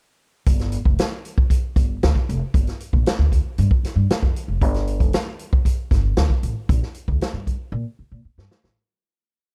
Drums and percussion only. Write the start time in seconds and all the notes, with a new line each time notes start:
0.46 kick, closed hi-hat
0.59 snare, closed hi-hat
0.72 closed hi-hat
0.85 kick
0.99 snare, closed hi-hat
1.25 closed hi-hat
1.38 kick
1.50 kick, closed hi-hat
1.76 kick, closed hi-hat
2.03 snare, closed hi-hat
2.15 kick
2.29 closed hi-hat
2.54 kick, closed hi-hat
2.67 snare, closed hi-hat
2.80 closed hi-hat
2.93 kick
3.06 snare, closed hi-hat
3.32 kick, closed hi-hat
3.58 closed hi-hat
3.71 kick
3.84 snare, closed hi-hat
4.10 snare, closed hi-hat
4.23 kick
4.36 closed hi-hat
4.62 kick, closed hi-hat
4.74 snare, closed hi-hat
4.87 closed hi-hat
5.00 kick, closed hi-hat
5.13 snare, closed hi-hat
5.39 closed hi-hat
5.53 kick
5.65 kick, closed hi-hat
5.91 kick, snare, closed hi-hat
6.17 snare, closed hi-hat
6.30 kick
6.43 closed hi-hat
6.69 kick, closed hi-hat
6.83 snare
6.94 closed hi-hat
7.08 kick
7.21 snare, closed hi-hat
7.47 kick, closed hi-hat
8.39 snare
8.51 snare
8.64 snare